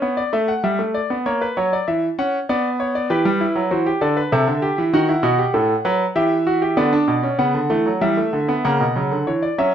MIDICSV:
0, 0, Header, 1, 2, 480
1, 0, Start_track
1, 0, Key_signature, 1, "minor"
1, 0, Tempo, 614125
1, 979, Time_signature, 3, 2, 24, 8
1, 5294, Tempo, 625652
1, 7574, End_track
2, 0, Start_track
2, 0, Title_t, "Grand piano"
2, 0, Program_c, 0, 0
2, 15, Note_on_c, 0, 73, 55
2, 16, Note_on_c, 0, 59, 70
2, 131, Note_off_c, 0, 73, 0
2, 133, Note_on_c, 0, 74, 67
2, 165, Note_off_c, 0, 59, 0
2, 251, Note_off_c, 0, 74, 0
2, 256, Note_on_c, 0, 57, 83
2, 259, Note_on_c, 0, 76, 66
2, 374, Note_off_c, 0, 76, 0
2, 376, Note_on_c, 0, 78, 64
2, 405, Note_off_c, 0, 57, 0
2, 492, Note_off_c, 0, 78, 0
2, 497, Note_on_c, 0, 55, 76
2, 498, Note_on_c, 0, 76, 67
2, 613, Note_off_c, 0, 55, 0
2, 616, Note_on_c, 0, 57, 65
2, 647, Note_off_c, 0, 76, 0
2, 738, Note_on_c, 0, 74, 71
2, 766, Note_off_c, 0, 57, 0
2, 861, Note_on_c, 0, 59, 69
2, 888, Note_off_c, 0, 74, 0
2, 977, Note_off_c, 0, 59, 0
2, 984, Note_on_c, 0, 58, 81
2, 985, Note_on_c, 0, 73, 69
2, 1100, Note_off_c, 0, 73, 0
2, 1106, Note_on_c, 0, 71, 69
2, 1133, Note_off_c, 0, 58, 0
2, 1221, Note_off_c, 0, 71, 0
2, 1226, Note_on_c, 0, 73, 62
2, 1227, Note_on_c, 0, 54, 81
2, 1341, Note_off_c, 0, 73, 0
2, 1351, Note_on_c, 0, 74, 67
2, 1376, Note_off_c, 0, 54, 0
2, 1464, Note_off_c, 0, 74, 0
2, 1466, Note_on_c, 0, 76, 62
2, 1468, Note_on_c, 0, 52, 74
2, 1615, Note_off_c, 0, 76, 0
2, 1616, Note_off_c, 0, 52, 0
2, 1708, Note_on_c, 0, 61, 82
2, 1709, Note_on_c, 0, 78, 73
2, 1856, Note_off_c, 0, 61, 0
2, 1856, Note_off_c, 0, 78, 0
2, 1948, Note_on_c, 0, 74, 73
2, 1949, Note_on_c, 0, 59, 83
2, 2094, Note_off_c, 0, 74, 0
2, 2186, Note_on_c, 0, 73, 69
2, 2299, Note_off_c, 0, 73, 0
2, 2307, Note_on_c, 0, 74, 72
2, 2407, Note_off_c, 0, 59, 0
2, 2418, Note_off_c, 0, 74, 0
2, 2423, Note_on_c, 0, 52, 84
2, 2423, Note_on_c, 0, 67, 78
2, 2425, Note_on_c, 0, 71, 75
2, 2535, Note_off_c, 0, 52, 0
2, 2542, Note_on_c, 0, 55, 86
2, 2568, Note_off_c, 0, 67, 0
2, 2662, Note_on_c, 0, 64, 72
2, 2687, Note_off_c, 0, 55, 0
2, 2778, Note_on_c, 0, 54, 76
2, 2807, Note_off_c, 0, 64, 0
2, 2882, Note_off_c, 0, 71, 0
2, 2892, Note_off_c, 0, 54, 0
2, 2899, Note_on_c, 0, 66, 68
2, 2899, Note_on_c, 0, 72, 59
2, 2900, Note_on_c, 0, 52, 79
2, 3012, Note_off_c, 0, 66, 0
2, 3020, Note_on_c, 0, 67, 72
2, 3045, Note_off_c, 0, 72, 0
2, 3046, Note_off_c, 0, 52, 0
2, 3132, Note_off_c, 0, 67, 0
2, 3136, Note_on_c, 0, 74, 69
2, 3137, Note_on_c, 0, 50, 81
2, 3138, Note_on_c, 0, 69, 70
2, 3251, Note_off_c, 0, 69, 0
2, 3257, Note_on_c, 0, 71, 65
2, 3283, Note_off_c, 0, 74, 0
2, 3284, Note_off_c, 0, 50, 0
2, 3371, Note_off_c, 0, 71, 0
2, 3378, Note_on_c, 0, 76, 69
2, 3379, Note_on_c, 0, 48, 91
2, 3380, Note_on_c, 0, 69, 71
2, 3492, Note_off_c, 0, 48, 0
2, 3498, Note_on_c, 0, 50, 73
2, 3526, Note_off_c, 0, 69, 0
2, 3612, Note_on_c, 0, 67, 72
2, 3645, Note_off_c, 0, 50, 0
2, 3737, Note_on_c, 0, 52, 84
2, 3761, Note_off_c, 0, 67, 0
2, 3841, Note_off_c, 0, 76, 0
2, 3851, Note_off_c, 0, 52, 0
2, 3856, Note_on_c, 0, 51, 93
2, 3858, Note_on_c, 0, 66, 83
2, 3858, Note_on_c, 0, 78, 78
2, 3971, Note_off_c, 0, 66, 0
2, 3976, Note_on_c, 0, 64, 70
2, 4004, Note_off_c, 0, 51, 0
2, 4086, Note_on_c, 0, 47, 87
2, 4088, Note_on_c, 0, 66, 73
2, 4090, Note_off_c, 0, 64, 0
2, 4206, Note_off_c, 0, 66, 0
2, 4209, Note_on_c, 0, 67, 66
2, 4236, Note_off_c, 0, 47, 0
2, 4326, Note_off_c, 0, 67, 0
2, 4329, Note_on_c, 0, 45, 78
2, 4329, Note_on_c, 0, 69, 72
2, 4478, Note_off_c, 0, 69, 0
2, 4479, Note_off_c, 0, 45, 0
2, 4570, Note_on_c, 0, 54, 94
2, 4571, Note_on_c, 0, 71, 76
2, 4720, Note_off_c, 0, 54, 0
2, 4721, Note_off_c, 0, 71, 0
2, 4786, Note_off_c, 0, 78, 0
2, 4811, Note_on_c, 0, 52, 84
2, 4811, Note_on_c, 0, 67, 74
2, 4813, Note_on_c, 0, 76, 76
2, 4960, Note_off_c, 0, 67, 0
2, 5054, Note_on_c, 0, 66, 74
2, 5170, Note_off_c, 0, 66, 0
2, 5172, Note_on_c, 0, 67, 72
2, 5278, Note_off_c, 0, 52, 0
2, 5278, Note_off_c, 0, 76, 0
2, 5289, Note_off_c, 0, 67, 0
2, 5290, Note_on_c, 0, 50, 75
2, 5291, Note_on_c, 0, 59, 83
2, 5291, Note_on_c, 0, 74, 73
2, 5406, Note_off_c, 0, 59, 0
2, 5412, Note_on_c, 0, 62, 83
2, 5438, Note_off_c, 0, 50, 0
2, 5527, Note_on_c, 0, 47, 73
2, 5558, Note_off_c, 0, 62, 0
2, 5646, Note_on_c, 0, 61, 69
2, 5675, Note_off_c, 0, 47, 0
2, 5752, Note_off_c, 0, 74, 0
2, 5763, Note_off_c, 0, 61, 0
2, 5764, Note_on_c, 0, 49, 58
2, 5764, Note_on_c, 0, 59, 75
2, 5765, Note_on_c, 0, 78, 64
2, 5882, Note_off_c, 0, 49, 0
2, 5885, Note_on_c, 0, 50, 67
2, 5914, Note_off_c, 0, 59, 0
2, 6003, Note_off_c, 0, 50, 0
2, 6004, Note_on_c, 0, 52, 76
2, 6004, Note_on_c, 0, 57, 83
2, 6123, Note_off_c, 0, 52, 0
2, 6128, Note_on_c, 0, 54, 66
2, 6155, Note_off_c, 0, 57, 0
2, 6234, Note_off_c, 0, 78, 0
2, 6245, Note_off_c, 0, 54, 0
2, 6246, Note_on_c, 0, 52, 73
2, 6246, Note_on_c, 0, 55, 80
2, 6246, Note_on_c, 0, 76, 71
2, 6364, Note_off_c, 0, 55, 0
2, 6367, Note_on_c, 0, 57, 62
2, 6396, Note_off_c, 0, 52, 0
2, 6487, Note_on_c, 0, 50, 68
2, 6517, Note_off_c, 0, 57, 0
2, 6607, Note_on_c, 0, 59, 78
2, 6637, Note_off_c, 0, 50, 0
2, 6713, Note_off_c, 0, 76, 0
2, 6725, Note_off_c, 0, 59, 0
2, 6731, Note_on_c, 0, 58, 88
2, 6731, Note_on_c, 0, 78, 72
2, 6732, Note_on_c, 0, 49, 71
2, 6847, Note_off_c, 0, 49, 0
2, 6852, Note_on_c, 0, 47, 68
2, 6879, Note_off_c, 0, 58, 0
2, 6967, Note_off_c, 0, 47, 0
2, 6969, Note_on_c, 0, 54, 72
2, 6972, Note_on_c, 0, 49, 64
2, 7087, Note_off_c, 0, 49, 0
2, 7092, Note_on_c, 0, 50, 60
2, 7119, Note_off_c, 0, 54, 0
2, 7197, Note_off_c, 0, 78, 0
2, 7207, Note_off_c, 0, 50, 0
2, 7210, Note_on_c, 0, 73, 57
2, 7211, Note_on_c, 0, 52, 70
2, 7327, Note_off_c, 0, 73, 0
2, 7328, Note_on_c, 0, 74, 66
2, 7360, Note_off_c, 0, 52, 0
2, 7446, Note_off_c, 0, 74, 0
2, 7449, Note_on_c, 0, 54, 68
2, 7451, Note_on_c, 0, 61, 84
2, 7451, Note_on_c, 0, 76, 69
2, 7569, Note_off_c, 0, 76, 0
2, 7574, Note_off_c, 0, 54, 0
2, 7574, Note_off_c, 0, 61, 0
2, 7574, End_track
0, 0, End_of_file